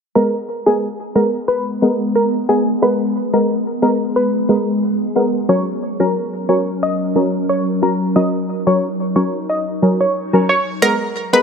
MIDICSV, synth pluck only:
0, 0, Header, 1, 2, 480
1, 0, Start_track
1, 0, Key_signature, 5, "minor"
1, 0, Tempo, 666667
1, 114, Time_signature, 4, 2, 24, 8
1, 8227, End_track
2, 0, Start_track
2, 0, Title_t, "Synth pluck"
2, 0, Program_c, 0, 84
2, 110, Note_on_c, 0, 70, 94
2, 207, Note_off_c, 0, 70, 0
2, 478, Note_on_c, 0, 68, 79
2, 563, Note_off_c, 0, 68, 0
2, 832, Note_on_c, 0, 70, 70
2, 928, Note_off_c, 0, 70, 0
2, 1066, Note_on_c, 0, 71, 101
2, 1415, Note_off_c, 0, 71, 0
2, 1551, Note_on_c, 0, 70, 81
2, 1647, Note_off_c, 0, 70, 0
2, 1792, Note_on_c, 0, 68, 81
2, 1888, Note_off_c, 0, 68, 0
2, 2034, Note_on_c, 0, 71, 95
2, 2129, Note_off_c, 0, 71, 0
2, 2402, Note_on_c, 0, 70, 73
2, 2486, Note_off_c, 0, 70, 0
2, 2754, Note_on_c, 0, 70, 74
2, 2849, Note_off_c, 0, 70, 0
2, 2996, Note_on_c, 0, 71, 92
2, 3340, Note_off_c, 0, 71, 0
2, 3954, Note_on_c, 0, 73, 97
2, 4049, Note_off_c, 0, 73, 0
2, 4320, Note_on_c, 0, 70, 74
2, 4405, Note_off_c, 0, 70, 0
2, 4672, Note_on_c, 0, 73, 83
2, 4768, Note_off_c, 0, 73, 0
2, 4916, Note_on_c, 0, 75, 96
2, 5260, Note_off_c, 0, 75, 0
2, 5396, Note_on_c, 0, 73, 80
2, 5490, Note_off_c, 0, 73, 0
2, 5636, Note_on_c, 0, 70, 82
2, 5730, Note_off_c, 0, 70, 0
2, 5874, Note_on_c, 0, 75, 97
2, 5969, Note_off_c, 0, 75, 0
2, 6241, Note_on_c, 0, 73, 79
2, 6325, Note_off_c, 0, 73, 0
2, 6594, Note_on_c, 0, 73, 74
2, 6689, Note_off_c, 0, 73, 0
2, 6836, Note_on_c, 0, 75, 80
2, 6930, Note_off_c, 0, 75, 0
2, 7204, Note_on_c, 0, 73, 78
2, 7287, Note_off_c, 0, 73, 0
2, 7555, Note_on_c, 0, 73, 84
2, 7649, Note_off_c, 0, 73, 0
2, 7793, Note_on_c, 0, 70, 94
2, 7972, Note_off_c, 0, 70, 0
2, 8161, Note_on_c, 0, 71, 77
2, 8227, Note_off_c, 0, 71, 0
2, 8227, End_track
0, 0, End_of_file